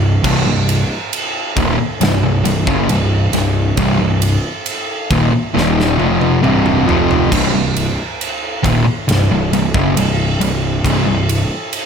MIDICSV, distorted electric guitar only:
0, 0, Header, 1, 3, 480
1, 0, Start_track
1, 0, Tempo, 883652
1, 131, Time_signature, 4, 2, 24, 8
1, 6441, End_track
2, 0, Start_track
2, 0, Title_t, "Distorted electric guitar"
2, 0, Program_c, 0, 30
2, 0, Note_on_c, 0, 36, 76
2, 0, Note_on_c, 0, 43, 71
2, 85, Note_off_c, 0, 43, 0
2, 86, Note_off_c, 0, 36, 0
2, 128, Note_on_c, 0, 36, 106
2, 130, Note_on_c, 0, 43, 102
2, 243, Note_off_c, 0, 36, 0
2, 243, Note_off_c, 0, 43, 0
2, 254, Note_on_c, 0, 36, 66
2, 257, Note_on_c, 0, 43, 69
2, 445, Note_off_c, 0, 36, 0
2, 446, Note_off_c, 0, 43, 0
2, 852, Note_on_c, 0, 39, 98
2, 857, Note_on_c, 0, 46, 103
2, 965, Note_off_c, 0, 39, 0
2, 967, Note_off_c, 0, 46, 0
2, 1091, Note_on_c, 0, 36, 75
2, 1091, Note_on_c, 0, 43, 77
2, 1207, Note_off_c, 0, 36, 0
2, 1209, Note_off_c, 0, 43, 0
2, 1213, Note_on_c, 0, 36, 66
2, 1215, Note_on_c, 0, 43, 65
2, 1319, Note_off_c, 0, 36, 0
2, 1323, Note_off_c, 0, 43, 0
2, 1326, Note_on_c, 0, 36, 69
2, 1329, Note_on_c, 0, 43, 70
2, 1448, Note_off_c, 0, 36, 0
2, 1450, Note_on_c, 0, 42, 91
2, 1451, Note_off_c, 0, 43, 0
2, 1454, Note_on_c, 0, 49, 108
2, 1564, Note_off_c, 0, 42, 0
2, 1566, Note_off_c, 0, 49, 0
2, 1573, Note_on_c, 0, 36, 77
2, 1575, Note_on_c, 0, 43, 89
2, 1765, Note_off_c, 0, 36, 0
2, 1766, Note_off_c, 0, 43, 0
2, 1813, Note_on_c, 0, 36, 65
2, 1813, Note_on_c, 0, 43, 84
2, 2005, Note_off_c, 0, 36, 0
2, 2005, Note_off_c, 0, 43, 0
2, 2049, Note_on_c, 0, 36, 101
2, 2052, Note_on_c, 0, 43, 107
2, 2163, Note_off_c, 0, 36, 0
2, 2165, Note_off_c, 0, 43, 0
2, 2170, Note_on_c, 0, 36, 69
2, 2172, Note_on_c, 0, 43, 78
2, 2363, Note_off_c, 0, 36, 0
2, 2364, Note_off_c, 0, 43, 0
2, 2775, Note_on_c, 0, 39, 98
2, 2777, Note_on_c, 0, 46, 103
2, 2887, Note_off_c, 0, 39, 0
2, 2888, Note_off_c, 0, 46, 0
2, 3010, Note_on_c, 0, 39, 109
2, 3010, Note_on_c, 0, 46, 104
2, 3014, Note_on_c, 0, 51, 109
2, 3244, Note_off_c, 0, 39, 0
2, 3244, Note_off_c, 0, 46, 0
2, 3246, Note_off_c, 0, 51, 0
2, 3250, Note_on_c, 0, 41, 94
2, 3251, Note_on_c, 0, 48, 102
2, 3251, Note_on_c, 0, 53, 95
2, 3484, Note_off_c, 0, 41, 0
2, 3485, Note_off_c, 0, 48, 0
2, 3485, Note_off_c, 0, 53, 0
2, 3487, Note_on_c, 0, 36, 96
2, 3490, Note_on_c, 0, 43, 102
2, 3492, Note_on_c, 0, 48, 110
2, 3721, Note_off_c, 0, 48, 0
2, 3722, Note_off_c, 0, 36, 0
2, 3724, Note_off_c, 0, 43, 0
2, 3725, Note_on_c, 0, 41, 93
2, 3728, Note_on_c, 0, 48, 97
2, 3729, Note_on_c, 0, 53, 112
2, 3962, Note_off_c, 0, 41, 0
2, 3963, Note_off_c, 0, 48, 0
2, 3964, Note_off_c, 0, 53, 0
2, 3973, Note_on_c, 0, 36, 94
2, 3974, Note_on_c, 0, 43, 104
2, 4085, Note_off_c, 0, 36, 0
2, 4086, Note_off_c, 0, 43, 0
2, 4091, Note_on_c, 0, 36, 61
2, 4092, Note_on_c, 0, 43, 78
2, 4284, Note_off_c, 0, 36, 0
2, 4284, Note_off_c, 0, 43, 0
2, 4688, Note_on_c, 0, 39, 95
2, 4691, Note_on_c, 0, 46, 100
2, 4803, Note_off_c, 0, 39, 0
2, 4804, Note_off_c, 0, 46, 0
2, 4931, Note_on_c, 0, 36, 56
2, 4935, Note_on_c, 0, 43, 74
2, 5050, Note_off_c, 0, 36, 0
2, 5051, Note_off_c, 0, 43, 0
2, 5056, Note_on_c, 0, 36, 59
2, 5057, Note_on_c, 0, 43, 68
2, 5170, Note_off_c, 0, 36, 0
2, 5173, Note_off_c, 0, 43, 0
2, 5177, Note_on_c, 0, 36, 68
2, 5180, Note_on_c, 0, 43, 68
2, 5294, Note_off_c, 0, 36, 0
2, 5295, Note_off_c, 0, 43, 0
2, 5297, Note_on_c, 0, 42, 86
2, 5299, Note_on_c, 0, 49, 104
2, 5407, Note_off_c, 0, 42, 0
2, 5408, Note_off_c, 0, 49, 0
2, 5414, Note_on_c, 0, 36, 67
2, 5416, Note_on_c, 0, 43, 86
2, 5605, Note_off_c, 0, 36, 0
2, 5606, Note_off_c, 0, 43, 0
2, 5650, Note_on_c, 0, 36, 69
2, 5650, Note_on_c, 0, 43, 75
2, 5842, Note_off_c, 0, 36, 0
2, 5842, Note_off_c, 0, 43, 0
2, 5889, Note_on_c, 0, 36, 93
2, 5891, Note_on_c, 0, 43, 110
2, 6001, Note_off_c, 0, 36, 0
2, 6003, Note_off_c, 0, 43, 0
2, 6008, Note_on_c, 0, 36, 63
2, 6010, Note_on_c, 0, 43, 75
2, 6201, Note_off_c, 0, 36, 0
2, 6202, Note_off_c, 0, 43, 0
2, 6441, End_track
3, 0, Start_track
3, 0, Title_t, "Muted distorted electric guitar strokes"
3, 974, Note_on_c, 9, 29, 65
3, 1029, Note_off_c, 9, 29, 0
3, 2894, Note_on_c, 9, 29, 60
3, 2948, Note_off_c, 9, 29, 0
3, 4810, Note_on_c, 9, 29, 65
3, 4864, Note_off_c, 9, 29, 0
3, 6441, End_track
0, 0, End_of_file